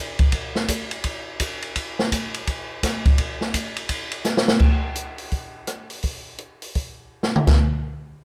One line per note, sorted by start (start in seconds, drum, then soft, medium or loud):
0.19 kick soft
0.19 ride soft
0.32 kick soft
0.32 ride medium
0.55 snare soft
0.68 kick soft
0.68 hi-hat pedal medium
0.68 ride medium
0.91 ride soft
1.04 kick soft
1.04 ride medium
1.40 kick soft
1.40 hi-hat pedal soft
1.40 ride medium
1.62 ride soft
1.76 kick soft
1.76 ride medium
1.99 snare medium
2.12 kick soft
2.12 hi-hat pedal medium
2.12 ride medium
2.34 ride soft
2.47 kick soft
2.47 ride medium
2.83 kick soft
2.83 snare soft
2.83 hi-hat pedal soft
2.83 ride medium
3.06 kick medium
3.06 ride soft
3.18 kick soft
3.18 ride medium
3.41 snare soft
3.54 kick soft
3.54 hi-hat pedal soft
3.54 ride medium
3.77 ride soft
3.89 kick soft
3.89 ride medium
4.12 ride soft
4.24 snare soft
4.24 hi-hat pedal medium
4.37 snare medium
4.48 snare medium
4.59 kick medium
4.59 crash medium
4.95 closed hi-hat soft
5.18 open hi-hat soft
5.32 kick soft
5.32 open hi-hat soft
5.67 cross-stick medium
5.67 closed hi-hat soft
5.90 open hi-hat soft
6.03 kick soft
6.03 open hi-hat soft
6.38 closed hi-hat soft
6.62 open hi-hat soft
6.75 kick soft
6.75 open hi-hat soft
7.23 snare soft
7.36 mid tom medium
7.47 kick medium
7.47 snare medium
7.47 splash medium